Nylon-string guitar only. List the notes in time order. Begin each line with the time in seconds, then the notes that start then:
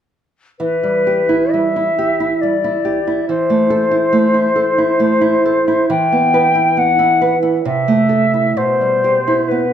0.60 E3
0.83 G3
1.07 G4
1.29 E4
1.54 G3
1.76 E4
1.99 G4
2.20 E4
2.43 G3
2.64 E4
2.85 G4
3.07 E4
3.29 E3
3.50 A3
3.70 A4
3.91 E4
4.13 A3
4.34 E4
4.56 A4
4.78 E4
5.00 A3
5.21 E4
5.46 A4
5.68 E4
5.90 E3
6.12 B3
6.34 B4
6.55 E4
6.77 B3
6.99 E4
7.21 B4
7.43 E4
7.65 C3
7.88 A3
8.09 A4
8.34 E4
8.57 B2
8.81 G3
9.04 G4
9.28 E4
9.51 B3